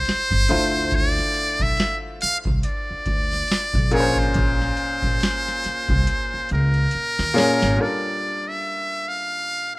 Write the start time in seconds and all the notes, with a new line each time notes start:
Already playing: C5
0.05 muted upright bass stroke, snare, closed hi-hat
0.31 G1, kick
0.48 D2 D3 A3 E4 F4 C5, closed hi-hat
0.91 kick, closed hi-hat
0.95 D5
1.18 snare
1.34 closed hi-hat
1.59 B1 E5, kick, closed hi-hat
1.77 snare, closed hi-hat
2.21 F5, muted upright bass stroke, snare, closed hi-hat
2.44 C2, kick, closed hi-hat
2.63 D5, closed hi-hat
2.91 muted upright bass stroke
3.06 D2, kick, closed hi-hat
3.31 snare, closed hi-hat
3.48 snare, closed hi-hat
3.74 B1, kick
3.91 A#1 A#2 A#3 C#4 G#4 A#4 C#5, closed hi-hat
4.00 C5
4.16 C5, kick
4.34 A#1, kick, closed hi-hat
4.62 snare
4.77 closed hi-hat
5.02 A#1, kick, closed hi-hat
5.21 snare, closed hi-hat
5.48 snare
5.64 muted upright bass stroke, snare, closed hi-hat
5.87 C2, kick, closed hi-hat
6.07 closed hi-hat
6.34 muted upright bass stroke
6.49 C#2, closed hi-hat
6.53 A#4
6.74 closed hi-hat
6.91 muted upright bass stroke, closed hi-hat
7.19 D#2, snare
7.34 A#2 A#3 C#4 G#4 C#5, closed hi-hat
7.38 snare
7.59 G#1, snare, closed hi-hat
7.76 G3 D4 F4 A4 A#4
7.81 D5
8.48 E5
9.08 F5
9.76 F5